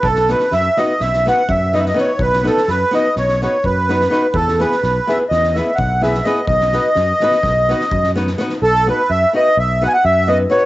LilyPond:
<<
  \new Staff \with { instrumentName = "Accordion" } { \time 9/8 \key b \mixolydian \tempo 4. = 84 a'8 b'8 e''8 dis''8 e''8 fis''8 e''8 dis''32 e''32 dis''16 cis''8 | b'8 a'8 b'8 dis''8 cis''8 cis''8 b'4. | a'8 b'4 e''8 dis''8 e''8 fis''8 e''8 dis''8 | dis''2.~ dis''8 r4 |
a'8 b'8 e''8 dis''8 e''8 fis''32 gis''32 fis''16 e''8 dis''8 cis''8 | }
  \new Staff \with { instrumentName = "Nylon-string guitar" } { \time 9/8 \key b \mixolydian r8 <b dis' fis' b'>8 r8 <b dis' fis' b'>8 r8 <b dis' fis' b'>8 r8 <b dis' fis' b'>8 <b dis' fis' b'>8 | r8 <b dis' fis' b'>8 r8 <b dis' fis' b'>8 r8 <b dis' fis' b'>8 r8 <b dis' fis' b'>8 <b dis' fis' b'>8 | r8 <b e' gis' b'>8 r8 <b e' gis' b'>8 r8 <b e' gis' b'>8 r8 <b e' gis' b'>8 <b e' gis' b'>8 | r8 <b dis' fis' b'>8 r8 <b dis' fis' b'>8 r8 <b dis' fis' b'>8 r8 <b dis' fis' b'>8 <b dis' fis' b'>8 |
r8 <b dis' fis' b'>8 r8 <b dis' fis' b'>8 r8 <b dis' fis' b'>8 r8 <b dis' fis' b'>8 <b dis' fis' b'>8 | }
  \new Staff \with { instrumentName = "Fingered electric bass" } { \clef bass \time 9/8 \key b \mixolydian b,,4 fis,8 r8 b,,4 fis,4. | b,,4 fis,8 r8 b,,4 fis,4. | e,4 b,,8 r8 e,4 b,,4. | b,,4 fis,8 r8 b,,4 fis,4. |
b,,4 fis,8 r8 b,,4 fis,4. | }
  \new DrumStaff \with { instrumentName = "Drums" } \drummode { \time 9/8 bd16 sn16 sn16 sn16 sn8 sn8 sn16 sn16 sn8 bd8 sn16 sn16 sn8 | bd16 sn16 sn16 sn16 sn8 sn8 sn16 sn16 sn8 bd8 sn16 sn16 sn8 | bd16 sn16 sn16 sn16 sn8 sn8 sn16 sn16 sn8 bd8 sn16 sn16 sn8 | bd16 sn16 sn8 sn8 sn16 sn16 <bd sn>8 sn16 sn16 bd16 sn16 sn16 sn16 sn16 sn16 |
r4 r4 r4 r4. | }
>>